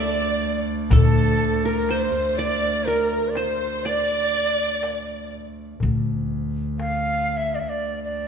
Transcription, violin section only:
0, 0, Header, 1, 2, 480
1, 0, Start_track
1, 0, Tempo, 981997
1, 443, Time_signature, 10, 3, 24, 8
1, 4045, End_track
2, 0, Start_track
2, 0, Title_t, "Violin section"
2, 0, Program_c, 0, 48
2, 0, Note_on_c, 0, 74, 88
2, 308, Note_off_c, 0, 74, 0
2, 443, Note_on_c, 0, 69, 77
2, 783, Note_off_c, 0, 69, 0
2, 807, Note_on_c, 0, 70, 65
2, 919, Note_on_c, 0, 72, 71
2, 925, Note_off_c, 0, 70, 0
2, 1155, Note_on_c, 0, 74, 83
2, 1161, Note_off_c, 0, 72, 0
2, 1399, Note_off_c, 0, 74, 0
2, 1402, Note_on_c, 0, 70, 67
2, 1641, Note_on_c, 0, 72, 77
2, 1642, Note_off_c, 0, 70, 0
2, 1865, Note_off_c, 0, 72, 0
2, 1881, Note_on_c, 0, 74, 93
2, 2602, Note_off_c, 0, 74, 0
2, 4045, End_track
0, 0, End_of_file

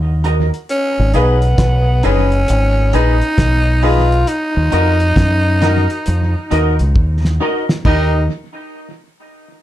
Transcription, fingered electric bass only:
0, 0, Header, 1, 2, 480
1, 0, Start_track
1, 0, Key_signature, -6, "minor"
1, 0, Tempo, 894988
1, 371, Time_signature, 4, 2, 24, 8
1, 5162, End_track
2, 0, Start_track
2, 0, Title_t, "Fingered electric bass"
2, 0, Program_c, 0, 33
2, 0, Note_on_c, 0, 39, 102
2, 268, Note_off_c, 0, 39, 0
2, 532, Note_on_c, 0, 32, 109
2, 611, Note_off_c, 0, 32, 0
2, 618, Note_on_c, 0, 35, 96
2, 843, Note_off_c, 0, 35, 0
2, 850, Note_on_c, 0, 35, 106
2, 1079, Note_off_c, 0, 35, 0
2, 1103, Note_on_c, 0, 30, 92
2, 1326, Note_off_c, 0, 30, 0
2, 1339, Note_on_c, 0, 32, 99
2, 1564, Note_off_c, 0, 32, 0
2, 1578, Note_on_c, 0, 34, 83
2, 1720, Note_off_c, 0, 34, 0
2, 1816, Note_on_c, 0, 35, 95
2, 2272, Note_off_c, 0, 35, 0
2, 2450, Note_on_c, 0, 39, 99
2, 2530, Note_off_c, 0, 39, 0
2, 2538, Note_on_c, 0, 41, 86
2, 2763, Note_off_c, 0, 41, 0
2, 2771, Note_on_c, 0, 42, 102
2, 3145, Note_off_c, 0, 42, 0
2, 3260, Note_on_c, 0, 41, 99
2, 3401, Note_off_c, 0, 41, 0
2, 3497, Note_on_c, 0, 39, 93
2, 3639, Note_off_c, 0, 39, 0
2, 3650, Note_on_c, 0, 37, 93
2, 3730, Note_off_c, 0, 37, 0
2, 3734, Note_on_c, 0, 39, 93
2, 3961, Note_off_c, 0, 39, 0
2, 4213, Note_on_c, 0, 39, 90
2, 4435, Note_off_c, 0, 39, 0
2, 5162, End_track
0, 0, End_of_file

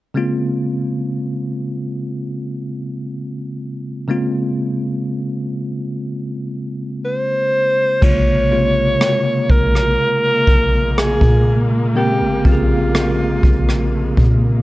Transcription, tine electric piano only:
0, 0, Header, 1, 2, 480
1, 0, Start_track
1, 0, Key_signature, -5, "minor"
1, 0, Tempo, 983607
1, 76, Time_signature, 4, 2, 24, 8
1, 7135, End_track
2, 0, Start_track
2, 0, Title_t, "Tine electric piano"
2, 0, Program_c, 0, 4
2, 70, Note_on_c, 0, 49, 69
2, 73, Note_on_c, 0, 56, 62
2, 77, Note_on_c, 0, 58, 62
2, 80, Note_on_c, 0, 60, 64
2, 85, Note_on_c, 0, 65, 76
2, 164, Control_c, 0, 64, 127
2, 1973, Note_off_c, 0, 49, 0
2, 1975, Note_off_c, 0, 56, 0
2, 1977, Note_off_c, 0, 58, 0
2, 1978, Note_off_c, 0, 60, 0
2, 1980, Note_off_c, 0, 65, 0
2, 1989, Note_on_c, 0, 49, 70
2, 1993, Note_on_c, 0, 56, 64
2, 1997, Note_on_c, 0, 58, 64
2, 2000, Note_on_c, 0, 60, 67
2, 2004, Note_on_c, 0, 65, 76
2, 3893, Note_off_c, 0, 49, 0
2, 3895, Note_off_c, 0, 56, 0
2, 3897, Note_off_c, 0, 58, 0
2, 3898, Note_off_c, 0, 60, 0
2, 3900, Note_off_c, 0, 65, 0
2, 3912, Note_on_c, 0, 49, 71
2, 3913, Note_on_c, 0, 56, 67
2, 3914, Note_on_c, 0, 58, 66
2, 3917, Note_on_c, 0, 48, 66
2, 3919, Note_on_c, 0, 65, 77
2, 3922, Control_c, 0, 64, 0
2, 4006, Control_c, 0, 64, 127
2, 4081, Note_off_c, 0, 49, 0
2, 4082, Note_off_c, 0, 56, 0
2, 4082, Note_off_c, 0, 58, 0
2, 4084, Note_off_c, 0, 48, 0
2, 4084, Note_off_c, 0, 65, 0
2, 4152, Note_on_c, 0, 49, 69
2, 4153, Note_on_c, 0, 56, 62
2, 4155, Note_on_c, 0, 58, 65
2, 4157, Note_on_c, 0, 48, 65
2, 4159, Note_on_c, 0, 65, 74
2, 4823, Note_off_c, 0, 49, 0
2, 4824, Note_off_c, 0, 56, 0
2, 4825, Note_off_c, 0, 58, 0
2, 4826, Note_off_c, 0, 48, 0
2, 4827, Note_off_c, 0, 65, 0
2, 5833, Note_on_c, 0, 49, 74
2, 5834, Note_on_c, 0, 56, 69
2, 5836, Note_on_c, 0, 58, 65
2, 5840, Note_on_c, 0, 60, 67
2, 5840, Note_on_c, 0, 70, 79
2, 6002, Note_off_c, 0, 49, 0
2, 6002, Note_off_c, 0, 56, 0
2, 6003, Note_off_c, 0, 58, 0
2, 6005, Note_off_c, 0, 60, 0
2, 6005, Note_off_c, 0, 70, 0
2, 6071, Note_on_c, 0, 49, 74
2, 6073, Note_on_c, 0, 56, 62
2, 6075, Note_on_c, 0, 58, 62
2, 6078, Note_on_c, 0, 60, 62
2, 6079, Note_on_c, 0, 67, 62
2, 6109, Note_off_c, 0, 67, 0
2, 6111, Note_on_c, 0, 68, 82
2, 6743, Note_off_c, 0, 49, 0
2, 6744, Note_off_c, 0, 56, 0
2, 6745, Note_off_c, 0, 58, 0
2, 6746, Note_off_c, 0, 60, 0
2, 6763, Note_off_c, 0, 68, 0
2, 7135, End_track
0, 0, End_of_file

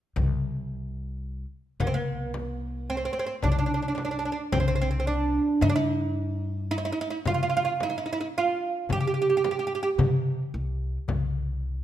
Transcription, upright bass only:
0, 0, Header, 1, 2, 480
1, 0, Start_track
1, 0, Tempo, 1092896
1, 72, Time_signature, 10, 3, 24, 8
1, 5200, End_track
2, 0, Start_track
2, 0, Title_t, "Upright bass"
2, 0, Program_c, 0, 32
2, 72, Note_on_c, 0, 36, 102
2, 631, Note_off_c, 0, 36, 0
2, 789, Note_on_c, 0, 36, 90
2, 1349, Note_off_c, 0, 36, 0
2, 1508, Note_on_c, 0, 36, 85
2, 1881, Note_off_c, 0, 36, 0
2, 1987, Note_on_c, 0, 36, 100
2, 2360, Note_off_c, 0, 36, 0
2, 2467, Note_on_c, 0, 43, 105
2, 3027, Note_off_c, 0, 43, 0
2, 3189, Note_on_c, 0, 48, 85
2, 3748, Note_off_c, 0, 48, 0
2, 3910, Note_on_c, 0, 48, 86
2, 4282, Note_off_c, 0, 48, 0
2, 4386, Note_on_c, 0, 48, 98
2, 4573, Note_off_c, 0, 48, 0
2, 4629, Note_on_c, 0, 36, 91
2, 4815, Note_off_c, 0, 36, 0
2, 4868, Note_on_c, 0, 36, 90
2, 5200, Note_off_c, 0, 36, 0
2, 5200, End_track
0, 0, End_of_file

